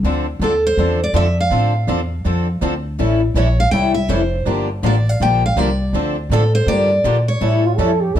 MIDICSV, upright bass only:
0, 0, Header, 1, 2, 480
1, 0, Start_track
1, 0, Key_signature, -1, "minor"
1, 0, Tempo, 369231
1, 40, Time_signature, 4, 2, 24, 8
1, 10655, End_track
2, 0, Start_track
2, 0, Title_t, "Upright bass"
2, 0, Program_c, 0, 32
2, 40, Note_on_c, 0, 38, 77
2, 506, Note_off_c, 0, 38, 0
2, 512, Note_on_c, 0, 39, 93
2, 982, Note_off_c, 0, 39, 0
2, 1002, Note_on_c, 0, 40, 86
2, 1466, Note_off_c, 0, 40, 0
2, 1474, Note_on_c, 0, 41, 89
2, 1942, Note_off_c, 0, 41, 0
2, 1956, Note_on_c, 0, 45, 76
2, 2424, Note_off_c, 0, 45, 0
2, 2435, Note_on_c, 0, 40, 90
2, 2903, Note_off_c, 0, 40, 0
2, 2923, Note_on_c, 0, 41, 87
2, 3387, Note_off_c, 0, 41, 0
2, 3398, Note_on_c, 0, 38, 89
2, 3865, Note_off_c, 0, 38, 0
2, 3889, Note_on_c, 0, 33, 79
2, 4339, Note_off_c, 0, 33, 0
2, 4347, Note_on_c, 0, 34, 84
2, 4819, Note_off_c, 0, 34, 0
2, 4833, Note_on_c, 0, 36, 85
2, 5302, Note_off_c, 0, 36, 0
2, 5312, Note_on_c, 0, 29, 81
2, 5782, Note_off_c, 0, 29, 0
2, 5796, Note_on_c, 0, 31, 75
2, 6264, Note_off_c, 0, 31, 0
2, 6273, Note_on_c, 0, 33, 90
2, 6743, Note_off_c, 0, 33, 0
2, 6762, Note_on_c, 0, 34, 81
2, 7221, Note_off_c, 0, 34, 0
2, 7229, Note_on_c, 0, 36, 82
2, 7700, Note_off_c, 0, 36, 0
2, 7707, Note_on_c, 0, 38, 88
2, 8175, Note_off_c, 0, 38, 0
2, 8183, Note_on_c, 0, 45, 97
2, 8654, Note_off_c, 0, 45, 0
2, 8662, Note_on_c, 0, 43, 90
2, 9136, Note_off_c, 0, 43, 0
2, 9153, Note_on_c, 0, 46, 88
2, 9622, Note_off_c, 0, 46, 0
2, 9629, Note_on_c, 0, 45, 74
2, 10100, Note_off_c, 0, 45, 0
2, 10114, Note_on_c, 0, 41, 92
2, 10583, Note_off_c, 0, 41, 0
2, 10592, Note_on_c, 0, 40, 85
2, 10655, Note_off_c, 0, 40, 0
2, 10655, End_track
0, 0, End_of_file